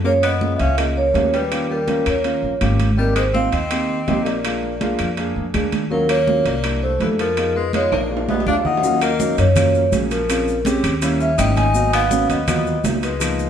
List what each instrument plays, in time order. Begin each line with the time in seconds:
Already playing: upright bass F#2
0.04 grand piano A#3 C#4 F4 G#4, tenor saxophone A#3, vibraphone C#5, high conga
0.23 tenor saxophone B3, vibraphone D#5, high conga, high timbale, claves
0.41 grand piano A#3 C#4 F4 G#4, high conga
0.56 upright bass C#2, tenor saxophone B3, vibraphone E5, high timbale
0.60 tenor saxophone C#4, vibraphone F5, high conga
0.78 tenor saxophone A#3, grand piano A#3 C#4 F4 G#4, vibraphone D#5, high conga, high timbale, claves
0.96 tenor saxophone A#3, vibraphone C#5, high conga
1.14 upright bass D#2, grand piano A#3 C#4 F4 G#4, high conga, high timbale, low timbale
1.33 tenor saxophone G3, vibraphone B4, high conga, high timbale
1.51 grand piano A#3 C#4 F4 G4, high conga, high timbale, claves
1.69 tenor saxophone G3, vibraphone A#4, high conga
1.87 grand piano A#3 C#4 F4 A#4, high conga, high timbale
2.06 upright bass D#2, tenor saxophone A#3, vibraphone C#5, high conga, high timbale, claves
2.24 grand piano A#3 C#4 F4 A#4, high conga, high timbale
2.42 upright bass A#1, high conga
2.61 upright bass G#1, grand piano A#3 C#4 F4 G4, high conga, high timbale, claves
2.80 high conga, high timbale
2.97 tenor saxophone G3, grand piano A#3 C4 D#4 G4, vibraphone A#4, high conga
3.16 tenor saxophone G#3, vibraphone C5, high conga, high timbale, claves
3.34 grand piano A#3 C4 D#4 F4, tenor saxophone C4, vibraphone F5, high conga
3.52 upright bass D#2, tenor saxophone C4, vibraphone D#5, high conga, high timbale
3.70 grand piano A#3 C4 D#4 G4, high conga, high timbale, claves
3.90 high conga
4.07 upright bass A#1, grand piano A#3 C4 D#4 G4, high conga, high timbale, low timbale
4.25 tenor saxophone A#3, vibraphone D5, high conga, high timbale
4.43 grand piano G#3 A#3 D4 F4, high conga, high timbale, claves
4.63 high conga
4.80 grand piano G#3 A#3 D4 F4, high conga, high timbale
4.99 upright bass F2, high conga, high timbale, claves
5.17 grand piano G#3 A#3 D4 G#4, high conga, high timbale
5.36 upright bass F2, high conga
5.54 upright bass D#2, grand piano G#3 A#3 D4 G#4, high conga, high timbale, claves
5.72 high conga, high timbale
5.90 grand piano F#3 A#3 C#4 F4, tenor saxophone F#3, vibraphone A#4, high conga
6.09 tenor saxophone A#3, vibraphone C#5, high conga, high timbale, claves
6.26 grand piano F#3 A#3 C#4 F4, high conga
6.45 upright bass C2, tenor saxophone A#3, vibraphone D5, high conga, high timbale
6.63 grand piano G3 A#3 D4 E4, high conga, high timbale, claves
6.82 tenor saxophone A3, vibraphone C5, high conga
7.00 upright bass F2, tenor saxophone E3, grand piano G3 A#3 D4 E4, vibraphone A4, high conga, high timbale
7.18 tenor saxophone F3, vibraphone A#4, high conga, high timbale
7.37 grand piano G#3 B3 D#4 F4, high conga, high timbale, claves
7.55 tenor saxophone G#3, vibraphone B4, high conga
7.73 grand piano G#3 B3 D#4 F4, tenor saxophone G#3, vibraphone C#5, high conga, high timbale
7.92 upright bass A#1, tenor saxophone A#3, vibraphone D5, high timbale, claves
8.10 grand piano G#3 A#3 D4 F4, high conga
8.17 high timbale
8.29 tenor saxophone B3, vibraphone D#5, high conga, low timbale
8.40 low timbale
8.46 upright bass D#2, grand piano G#3 A#3 D4 F4, tenor saxophone D4, vibraphone F5, high conga, claves
8.53 low timbale
8.65 tenor saxophone D#4, vibraphone F#5, low conga
8.77 low timbale
8.82 grand piano F#3 A#3 C#4 F4, high conga, maracas
9.02 tenor saxophone A#3, vibraphone D#5, high conga, high timbale, claves, maracas
9.19 grand piano F#3 A#3 C#4 D#4, high conga, maracas
9.38 upright bass F#2, tenor saxophone A#3, vibraphone C#5, high conga, high timbale, maracas
9.55 grand piano F#3 A#3 C#4 F4, tenor saxophone A#3, vibraphone C#5, high conga, low conga, high timbale, claves, maracas
9.74 high conga, maracas
9.92 upright bass A#1, grand piano F#3 A#3 C#4 G#4, high conga, high timbale, maracas
10.11 tenor saxophone F3, vibraphone A#4, high conga, high timbale, maracas
10.29 grand piano G#3 C4 C#4 F4, high conga, high timbale, claves, maracas
10.47 high conga, maracas
10.65 grand piano G#3 C4 C#4 G4, high conga, high timbale, maracas
10.83 upright bass D#2, high conga, high timbale, claves, maracas
11.01 grand piano G3 A#3 C#4 E4, high conga, high timbale, maracas
11.20 tenor saxophone C#4, vibraphone E5, high conga, maracas
11.38 upright bass G#1, grand piano G3 A#3 C#4 E4, tenor saxophone D#4, vibraphone G5, high conga, high timbale, claves, maracas
11.56 tenor saxophone D#4, vibraphone G#5, high conga, high timbale, maracas
11.74 grand piano F#3 A#3 B3 D#4, high conga, maracas
11.93 tenor saxophone B3, vibraphone F5, high conga, high timbale, claves, maracas
12.10 grand piano F#3 A#3 B3 C#4, high conga, maracas
12.29 upright bass D#2, tenor saxophone B3, vibraphone D#5, high conga, high timbale, maracas
12.47 grand piano F#3 A#3 B3 F4, tenor saxophone B3, vibraphone D#5, high conga, low conga, high timbale, claves, maracas
12.66 high conga, maracas
12.83 upright bass C#2, grand piano F#3 A#3 B3 D#4, high conga, high timbale, low timbale, maracas
13.03 tenor saxophone G#3, vibraphone B4, high timbale, maracas
13.20 grand piano F3 A#3 B3 D#4, high conga, high timbale, claves, maracas
13.39 high conga, maracas